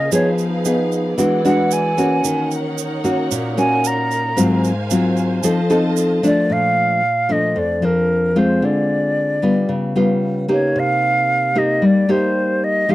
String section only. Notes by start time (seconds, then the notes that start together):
Already playing: G#4
0.12 D#4 B4 F5
1.17 E4 D5 F#5
2.24 D#4 A#4 C#5
4.36 C5 F5 G#5
5.44 F4 D#5 A5